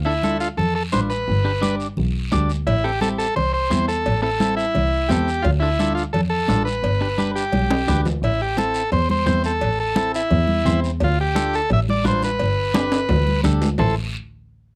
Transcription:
Already playing: D2
0.05 D4 E4 F4 A4
0.23 D4 F4 A4, high conga, short guiro
0.40 F4, short guiro
0.57 F2 A4, high conga, low conga, long guiro
0.75 A4
0.92 A1 D4 F4 B4 C5, high conga, short guiro
1.10 B4, short guiro
1.28 G1, high conga, long guiro
1.45 D4 G4 B4
1.61 D4 G4 D5, high conga, short guiro
1.80 short guiro
1.97 B1, high conga, low conga, long guiro
2.32 D2 D4 G4 D5, high conga, short guiro
2.49 short guiro
2.67 A1 E4, cowbell, high conga, long guiro
2.84 C4 E4 G4 A4
3.01 C4 E4 G4 A4, high conga, short guiro
3.18 A4, short guiro
3.36 C2 C5, cowbell, high conga, low conga, long guiro
3.53 C5
3.70 E2 C4 E4 C5, high conga, short guiro
3.88 A4, short guiro
4.06 A1, cowbell, high conga, long guiro
4.22 C4 E4 A4
4.40 C4 E4 A4, high conga, short guiro
4.57 E4, short guiro
4.75 C2, cowbell, high conga, low conga, long guiro
5.09 E2 C4 E4 G4 A4, high conga, low timbale, short guiro
5.28 short guiro
5.42 D2 F4, cowbell, high conga, long guiro
5.60 D4 E4 F4 A4
5.79 D4 F4 A4, high conga, short guiro
5.95 F4, short guiro
6.13 F2 A4, cowbell, high conga, low conga, long guiro
6.30 A4
6.48 A1 D4 F4 A4, high conga, low timbale, short guiro
6.65 B4, short guiro
6.83 G1, cowbell, high conga, long guiro
7.01 D4 G4 B4
7.18 D4 G4 B4, high conga, short guiro
7.35 G4, short guiro
7.52 B1, cowbell, high conga, long guiro
7.71 high conga, high timbale
7.88 D2 D4 G4 B4, low conga, low timbale, short guiro
8.05 low conga, low timbale, short guiro
8.22 A1 E4, cowbell, long guiro
8.42 G4
8.57 C4 E4 A4, high conga, short guiro
8.74 short guiro
8.92 E2 C5, cowbell, high conga, long guiro
9.10 C5, high conga
9.26 E2 C4 E4 C5, high conga, short guiro
9.44 A4, short guiro
9.61 A1, cowbell, high conga, long guiro
9.80 A4
9.96 C4 E4 A4, high conga, short guiro
10.14 E4, short guiro
10.31 E2, cowbell, high conga, low conga, long guiro
10.48 high conga
10.65 E2 C4 E4 C5, high conga, low conga, short guiro
10.84 short guiro
11.00 D2 F4, cowbell, high conga, long guiro
11.21 G4
11.35 D4 F4 A4, high conga, short guiro
11.53 A4, short guiro
11.70 A1 E5, cowbell, high conga, long guiro
11.89 D5, high conga
12.04 A1 D4 F4 B4 C5, high conga, low timbale, short guiro
12.22 B4, high conga, short guiro
12.39 G1, cowbell, high conga, long guiro
12.74 D4 G4 B4, high conga, high timbale, short guiro
12.92 high timbale, short guiro
13.09 D2, cowbell, high conga, low conga, low timbale, long guiro
13.27 high conga
13.44 D2 D4 G4 A4, high conga, low conga, short guiro
13.62 low timbale, short guiro
13.78 A1 E4 A4 C5, low conga, low timbale, long guiro

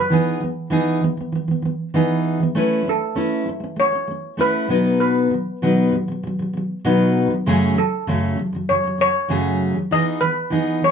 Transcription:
Already playing: F#2 C#3 B4
0.10 E3 B3 D#4 G#4
0.40 E3 B3
0.70 E3 B3 D#4 G#4
1.01 E3 B3
1.17 E3 B3
1.32 E3 B3
1.48 E3 B3
1.62 E3 B3
1.94 E3 B3 D#4 G#4
2.40 E3 B3
2.55 A3 C#4 E4 B4
2.84 A3 C#4
2.89 A4
3.15 A3 C#4 E4 B4
3.45 A3 C#4
3.60 A3 C#4
3.76 A3 C#4 C#5
3.91 A3 C#4
4.08 A3 C#4
4.37 A3 C#4 E4 B4
4.68 B2 F#3 B3 D#4 B4
5.00 B4
5.31 B2 F#3
5.62 B2 F#3 B3 D#4 B4
5.92 B2 F#3
6.08 B2 F#3
6.23 B2 F#3
6.39 B2 F#3
6.53 B2 F#3
6.85 B2 F#3 B3 D#4 B4
7.30 B2 F#3
7.46 F#2 C#3 F#3 A3 C#4 G#4
7.76 F#2 C#3 A4
8.07 F#2 C#3 F#3 A3 C#4
8.37 F#2 C#3 F#3
8.53 F#2 C#3 F#3
8.69 F#2 C#3 F#3 C#5
8.84 F#2 C#3 F#3
8.98 F#2 C#3 F#3 C#5
9.28 F#2 C#3 F#3 A3 C#4 G#4
9.75 F#2 C#3 F#3
9.91 E3 B3 D#4 G#4 D#5
10.21 E3 B3 B4
10.50 E3 B3 D#4 G#4
10.82 E3 B3 C#5

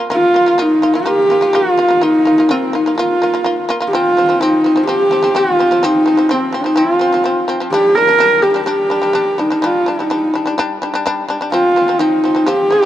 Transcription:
0.10 A#3 F4
0.34 A#3 F4
0.46 A#3 F4
0.58 A#3 D#4 F4
0.82 A#3 F4
0.94 A#3 F4
1.06 A#3 F4 G4
1.30 A#3 F4
1.41 A#3 F4
1.53 A#3 F4
1.78 A#3 F4
1.88 A#3 F4
2.01 A#3 D#4 F4
2.25 A#3 F4
2.38 A#3 F4
2.49 A#3 C4 F4
2.73 A#3 D#4 F4
2.86 A#3 F4
2.98 A#3 F4
3.22 A#3 F4
3.34 A#3 F4
3.44 A#3 F4
3.69 A#3 F4
3.80 A#3 F4
3.87 G4
3.93 F3 C4 F4
4.17 F3 C4
4.29 F3 C4
4.41 F3 C4 D#4
4.64 F3 C4
4.76 F3 C4
4.87 F3 C4 G4
5.11 F3 C4
5.23 F3 C4
5.35 F3 C4 F4
5.59 F3 C4
5.71 F3 C4
5.83 F3 C4 D#4
6.06 F3 C4
6.17 F3 C4
6.29 F3 C4
6.53 F3 C4 D#4
6.64 F3 C4
6.76 F3 C4 F4
6.99 F3 C4
7.13 F3 C4
7.24 F3 C4
7.48 F3 C4
7.60 F3 C4
7.72 G3 D4 G4
7.95 G3 D4 A#4
8.07 G3 D4
8.19 G3 D4
8.42 G3 D4 G4
8.54 G3 D4
8.66 G3 D4 G4
8.90 G3 D4
9.02 G3 D4
9.13 G3 D4
9.38 G3 D4 D#4
9.50 G3 D4
9.62 G3 D4 F4
9.86 G3 D4 D#4
9.99 G3 D4
10.10 G3 D4
10.34 G3 D4
10.46 G3 D4
10.58 G3 D4
10.82 G3 D4
10.94 G3 D4
11.06 G3 D4
11.29 G3 D4
11.41 G3 D4
11.52 F3 C4 F4
11.76 F3 C4
11.88 F3 C4
11.99 F3 C4 D#4
12.24 F3 C4
12.35 F3 C4
12.46 F3 C4 G4
12.71 F3 C4

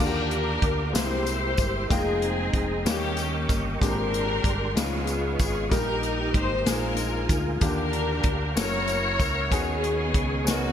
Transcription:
Already playing: G4 D5 D6
0.00 D#2 D3 A#3 D4 F4 G4 A#4 F5, crash, tambourine
0.07 G4
0.31 closed hi-hat
0.62 D2, kick, closed hi-hat
0.93 C2 C3 G#3 A#3 C4 E4 F4 G4 A#4 C5 E5 G5 C6, snare, closed hi-hat, tambourine
1.02 G4
1.26 closed hi-hat, tambourine
1.57 G1, kick, closed hi-hat, tambourine
1.89 F1 G#3 A#3 C4 D#4 F4 G#4 D#5 G5 A#5, kick, closed hi-hat, tambourine
2.22 closed hi-hat
2.53 F1, kick, closed hi-hat
2.85 D#2 D#3 G3 A#3 C#4 D#4 F4 G4 A#4 G5 C#6, snare, closed hi-hat, tambourine
2.93 G4
3.17 closed hi-hat, tambourine
3.49 G1, kick, closed hi-hat, tambourine
3.80 G#1 A#2 G#3 A#3 C4 D4 G4 A#4 D5 C6, kick, closed hi-hat, tambourine
3.85 A#4
4.14 closed hi-hat
4.44 G1, kick, closed hi-hat
4.76 C#2 C#3 G#3 B3 C#4 D#4 F4 B4 D#5 F5 C#6, snare, closed hi-hat, tambourine
4.80 G#4
5.07 closed hi-hat, tambourine
5.39 G#1 G#4, kick, closed hi-hat, tambourine
5.70 A#1 A#2 G3 A#3 D#4 G4 A#4 G5, kick, closed hi-hat, tambourine
5.75 A#4
6.03 closed hi-hat
6.34 G#1, kick, closed hi-hat
6.39 C5
6.66 A#1 A#2 G#3 A#3 D#4 F4 G#4 F5 G#5, snare, closed hi-hat, tambourine
6.70 A#4
6.96 closed hi-hat, tambourine
7.29 D2, kick, closed hi-hat, tambourine
7.61 D#2 D3 A#3 D4 F4 G4 A#4 D5 G5, kick, closed hi-hat, tambourine
7.93 closed hi-hat
8.23 D2, kick, closed hi-hat
8.56 F#1 A#3 C#4 E4 F#4 A4 A#4 E5 F#5 C#6, snare, closed hi-hat, tambourine
8.60 A#4 C#5
8.64 A#4
8.87 closed hi-hat, tambourine
9.19 C#2, kick, closed hi-hat, tambourine
9.50 D#2 D#3 B3 C#4 D#4 F#4 G#4 D#5 G#5 C#6, kick, closed hi-hat, tambourine
9.54 B3 C#4 G#4
9.84 closed hi-hat
10.14 C#2, kick, closed hi-hat
10.44 B3 C#4 D#4 F#4 G#4, snare, closed hi-hat, tambourine
10.49 B3 C#4 F#4 A#4

